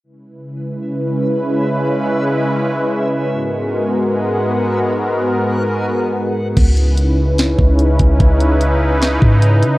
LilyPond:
<<
  \new Staff \with { instrumentName = "Synth texture" } { \time 4/4 \key cis \dorian \tempo 4 = 147 <cis' b' e''>1~ | <cis' b' e''>1 | <b gis' fis''>1~ | <b gis' fis''>1 |
r1 | r1 | }
  \new Staff \with { instrumentName = "Analog synth pad" } { \time 4/4 \key cis \dorian <cis gis cis' e' b'>1~ | <cis gis cis' e' b'>1 | <gis, gis b fis' ais'>1~ | <gis, gis b fis' ais'>1 |
<cis cis' dis' e' b'>1~ | <cis cis' dis' e' b'>1 | }
  \new Staff \with { instrumentName = "808-style bass" } { \clef bass \time 4/4 \key cis \dorian r1 | r1 | r1 | r1 |
cis,2~ cis,8 cis,4 cis,8 | cis,2~ cis,8 gis,4 cis8 | }
  \new DrumStaff \with { instrumentName = "Drums" } \drummode { \time 4/4 r4 r4 r4 r4 | r4 r4 r4 r4 | r4 r4 r4 r4 | r4 r4 r4 r4 |
<cymc hh bd>8 hh8 hh4 <hh sn>8 bd8 hh8 <hh bd>8 | <hh bd>8 hh8 hh4 <hh sn>8 bd8 hh8 hh8 | }
>>